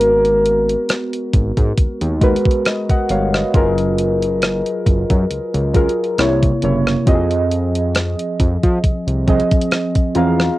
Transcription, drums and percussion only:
0.01 closed hi-hat medium
0.25 closed hi-hat soft
0.46 closed hi-hat medium
0.69 closed hi-hat medium
0.89 cross-stick loud
0.89 closed hi-hat medium
1.13 closed hi-hat medium
1.33 kick medium
1.33 closed hi-hat medium
1.57 kick medium
1.57 closed hi-hat soft
1.78 kick medium
1.78 closed hi-hat medium
2.01 closed hi-hat medium
2.22 kick medium
2.22 closed hi-hat medium
2.36 closed hi-hat medium
2.46 kick loud
2.51 closed hi-hat medium
2.66 cross-stick loud
2.66 closed hi-hat medium
2.90 kick medium
2.90 closed hi-hat medium
3.09 closed hi-hat medium
3.34 cross-stick medium
3.54 kick loud
3.54 closed hi-hat medium
3.78 closed hi-hat soft
3.98 closed hi-hat medium
4.22 closed hi-hat medium
4.42 cross-stick loud
4.42 closed hi-hat medium
4.66 closed hi-hat soft
4.86 kick medium
4.86 closed hi-hat medium
5.10 kick medium
5.10 closed hi-hat soft
5.31 closed hi-hat medium
5.54 closed hi-hat soft
5.74 kick medium
5.74 closed hi-hat medium
5.89 closed hi-hat soft
6.04 closed hi-hat medium
6.18 cross-stick loud
6.18 closed hi-hat medium
6.43 kick medium
6.43 closed hi-hat medium
6.62 closed hi-hat medium
6.87 cross-stick medium
7.07 kick loud
7.07 closed hi-hat medium
7.31 closed hi-hat soft
7.51 closed hi-hat medium
7.75 closed hi-hat medium
7.95 cross-stick loud
7.95 closed hi-hat medium
8.19 closed hi-hat soft
8.39 kick medium
8.39 closed hi-hat medium
8.63 kick medium
8.63 closed hi-hat soft
8.84 kick medium
8.84 closed hi-hat medium
9.08 closed hi-hat medium
9.28 kick medium
9.28 closed hi-hat soft
9.40 closed hi-hat soft
9.51 kick medium
9.51 closed hi-hat medium
9.61 closed hi-hat medium
9.71 cross-stick loud
9.71 closed hi-hat soft
9.95 kick medium
9.95 closed hi-hat medium
10.15 closed hi-hat medium
10.40 cross-stick medium

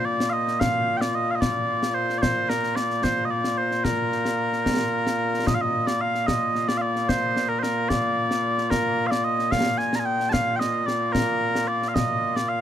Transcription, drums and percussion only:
0.20 snare medium
0.48 snare soft
0.61 concert bass drum medium
0.61 snare loud
1.01 snare medium
1.42 concert bass drum medium
1.42 snare loud
1.83 snare medium
2.10 snare soft
2.23 concert bass drum medium
2.23 snare loud
2.50 snare medium
2.63 snare soft
2.77 snare medium
2.90 snare soft
3.04 concert bass drum medium
3.04 snare loud
3.44 snare medium
3.71 snare soft
3.85 concert bass drum medium
3.85 snare medium
4.12 snare soft
4.25 snare medium
4.53 snare soft
4.66 concert bass drum medium
4.66 snare loud
5.07 snare medium
5.34 snare soft
5.47 concert bass drum medium
5.47 snare loud
5.87 snare medium
6.15 snare soft
6.28 concert bass drum medium
6.28 snare loud
6.55 snare soft
6.69 snare medium
6.96 snare soft
7.09 concert bass drum medium
7.09 snare loud
7.37 snare medium
7.63 snare medium
7.90 concert bass drum medium
7.90 snare loud
8.31 snare medium
8.58 snare soft
8.71 concert bass drum medium
8.71 snare loud
9.12 snare medium
9.39 snare soft
9.52 concert bass drum medium
9.52 snare loud
9.79 snare soft
9.93 snare medium
10.20 snare soft
10.34 concert bass drum medium
10.34 snare loud
10.61 snare medium
10.88 snare medium
11.15 concert bass drum medium
11.15 snare loud
11.55 snare medium
11.82 snare soft
11.96 concert bass drum medium
11.96 snare loud
12.36 snare medium

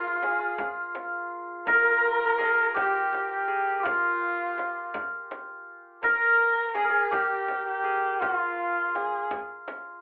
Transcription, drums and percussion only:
0.23 tombak tek medium
0.23 frame drum medium
0.58 frame drum medium
0.58 tombak dum medium
0.95 tombak tek medium
0.95 frame drum medium
1.67 frame drum medium
1.67 tombak dum medium
2.40 tombak tek medium
2.40 frame drum medium
2.76 frame drum medium
2.76 tombak dum medium
3.13 tombak tek medium
3.13 frame drum medium
3.85 frame drum loud
3.85 tombak dum medium
4.24 tombak ka soft
4.58 tombak tek medium
4.58 frame drum medium
4.94 frame drum medium
4.94 tombak dum medium
5.31 tombak tek medium
5.31 frame drum medium
6.03 frame drum medium
6.03 tombak dum medium
6.75 frame drum medium
7.12 frame drum medium
7.12 tombak dum medium
7.48 tombak tek medium
7.48 frame drum medium
8.22 frame drum medium
8.22 tombak dum medium
8.95 tombak tek medium
8.95 frame drum medium
9.31 frame drum medium
9.31 tombak dum medium
9.68 tombak tek medium
9.68 frame drum medium

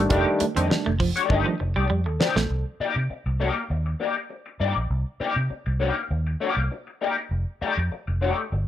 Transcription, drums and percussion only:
0.10 kick loud
0.10 closed hi-hat medium
0.40 closed hi-hat medium
0.57 closed hi-hat soft
0.71 snare loud
1.00 kick medium
1.00 open hi-hat medium
1.17 closed hi-hat medium
1.30 kick loud
2.21 snare loud
2.37 snare medium

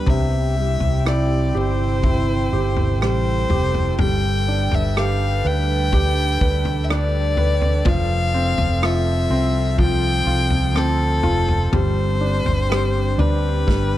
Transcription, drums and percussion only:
0.07 kick medium
0.07 floor tom medium
0.80 floor tom medium
1.07 cross-stick medium
2.03 kick medium
2.03 floor tom medium
2.77 floor tom medium
3.02 cross-stick medium
3.50 floor tom medium
3.74 floor tom soft
3.99 floor tom medium
4.71 floor tom medium
4.97 cross-stick medium
5.93 kick medium
5.93 floor tom medium
6.41 kick medium
6.65 floor tom medium
6.90 cross-stick medium
7.37 floor tom medium
7.62 floor tom medium
7.85 kick loud
7.85 floor tom medium
8.58 floor tom medium
8.83 cross-stick medium
9.78 kick medium
9.78 floor tom medium
10.51 floor tom medium
10.76 cross-stick medium
11.23 floor tom medium
11.48 floor tom soft
11.73 floor tom medium
12.46 floor tom medium
12.72 cross-stick loud
13.19 floor tom medium
13.68 kick medium
13.68 snare medium

